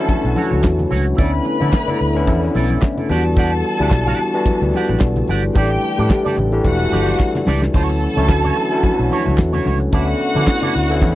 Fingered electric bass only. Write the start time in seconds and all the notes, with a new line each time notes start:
0.24 B1
0.52 C#2
0.64 E2
0.92 C#2
1.19 D2
1.62 D3
2.01 D2
2.28 E2
2.56 B1
3.10 E2
3.80 D2
3.91 B1
4.62 D2
4.89 A1
5.01 B1
5.29 G1
5.56 A1
5.99 A2
6.38 A1
6.65 E1
6.92 G1
7.47 C#2
7.75 D2
8.17 C#2
8.29 D2
8.99 B1
9.27 C#2
9.39 E2
9.66 C#2
9.93 D2
10.36 D3
10.76 D2
11.02 E2